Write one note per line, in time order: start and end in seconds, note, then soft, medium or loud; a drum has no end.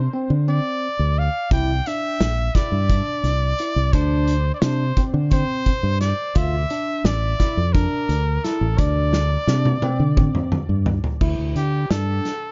0.00 0.13 C5 medium
0.13 0.33 C4 medium
0.30 0.59 D3 medium
0.48 0.87 C4 medium
0.48 1.20 D5 medium
0.99 1.28 D2 medium
1.19 1.52 F5 medium
1.51 1.80 C2 loud
1.51 1.71 E4 medium
1.51 1.88 G5 loud
1.51 kick medium
1.51 closed hi-hat medium
1.86 2.25 D4 medium
1.86 2.57 E5 loud
1.86 closed hi-hat medium
2.20 2.49 A#1 medium
2.20 snare medium
2.20 closed hi-hat medium
2.55 2.75 E4 medium
2.55 3.94 D5 medium
2.55 kick medium
2.55 snare soft
2.55 closed hi-hat medium
2.72 3.00 G2 medium
2.90 3.28 D4 medium
2.90 kick medium
2.90 closed hi-hat medium
3.23 3.52 C2 medium
3.23 closed hi-hat medium
3.58 3.79 E4 medium
3.58 closed hi-hat medium
3.76 3.90 C2 medium
3.92 4.50 D2 medium
3.92 4.33 D4 medium
3.92 4.53 C5 medium
3.92 kick loud
3.92 closed hi-hat medium
4.27 closed hi-hat medium
4.54 4.63 D5 medium
4.62 4.91 C3 medium
4.62 4.83 D4 medium
4.62 5.04 C5 medium
4.62 snare loud
4.62 closed hi-hat medium
4.97 5.17 C4 medium
4.97 kick medium
4.97 closed hi-hat medium
5.14 5.43 D3 loud
5.31 5.71 C4 medium
5.31 5.97 C5 loud
5.31 kick loud
5.31 closed hi-hat medium
5.66 kick medium
5.66 closed hi-hat medium
5.83 6.12 G2 medium
6.01 6.39 D5 medium
6.01 snare soft
6.01 closed hi-hat medium
6.35 6.64 D2 loud
6.35 6.55 F4 medium
6.35 7.07 E5 medium
6.35 kick loud
6.35 closed hi-hat medium
6.70 7.09 D4 medium
6.70 closed hi-hat medium
7.04 7.33 A1 medium
7.04 7.75 D5 loud
7.04 snare medium
7.04 closed hi-hat medium
7.40 7.59 E4 medium
7.40 kick medium
7.40 snare soft
7.40 closed hi-hat medium
7.57 7.86 F2 medium
7.73 8.13 D4 medium
7.73 8.46 A#4 medium
7.73 kick loud
7.73 closed hi-hat medium
8.09 8.37 D2 medium
8.09 closed hi-hat medium
8.44 8.63 E4 medium
8.44 8.80 A4 medium
8.44 snare soft
8.44 closed hi-hat medium
8.61 8.75 A1 medium
8.78 9.35 D2 medium
8.78 9.17 D4 medium
8.78 10.52 D5 medium
8.78 kick loud
8.78 closed hi-hat medium
9.13 snare medium
9.47 9.76 C3 medium
9.47 9.67 D4 medium
9.47 snare medium
9.65 high tom medium
9.82 10.02 C4 medium
9.82 high tom medium
10.00 10.28 D3 medium
10.17 10.56 C4 medium
10.17 kick loud
10.17 mid tom medium
10.35 mid tom medium
10.52 mid tom medium
10.69 10.98 G2 medium
10.86 floor tom medium
11.04 floor tom medium
11.21 11.35 D2 medium
11.21 11.60 E4 medium
11.21 kick medium
11.21 crash medium
11.38 11.53 D2 medium
11.55 11.84 D3 medium
11.55 11.92 G4 medium
11.55 closed hi-hat medium
11.90 12.19 G2 medium
11.90 12.29 D4 medium
11.90 12.52 A4 medium
11.90 snare medium
11.90 closed hi-hat medium
12.25 snare soft
12.25 closed hi-hat medium